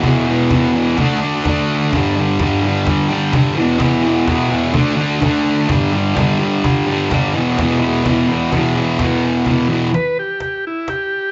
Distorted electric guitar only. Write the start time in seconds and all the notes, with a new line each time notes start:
0.03 E2 B2
0.07 E3
0.27 E3
0.32 B2
0.50 E2 B2
0.55 E3
0.74 E3
0.78 B2
0.97 D3 A3
1.02 D4
1.21 A3 D4
1.45 D3 A3
1.49 D4
1.92 G2 D3
1.96 G3
2.16 G3
2.20 D3
2.40 G2 D3
2.45 G3
2.63 G3
2.67 D3
3.10 D3 G3
3.33 G2 D3
3.37 G3
3.57 B2 E3
3.61 E2
3.79 E2 B2
3.84 E3
4.03 E3
4.07 B2
4.27 E2 B2
4.31 E3
4.50 E3
4.55 B2
4.73 D3 A3
4.77 D4
4.97 D4
5.01 A3
5.21 D3 A3
5.25 D4
5.68 G2 D3
5.72 G3
5.92 G3
5.97 D3
6.15 G2 D3
6.20 G3
6.39 G3
6.44 D3
6.87 G3
6.92 D3
7.10 G2 D3
7.14 G3
7.34 B2 E3
7.38 E2
7.58 E2 B2
7.63 E3
7.80 E3
7.85 B2
8.04 E2 B2
8.09 E3
8.28 E3
8.32 B2
8.52 E2 B2
8.56 E3
8.76 E3
8.80 B2
8.99 E2 B2
9.04 E3
9.47 E2 B2 E3
9.69 E2 B2 E3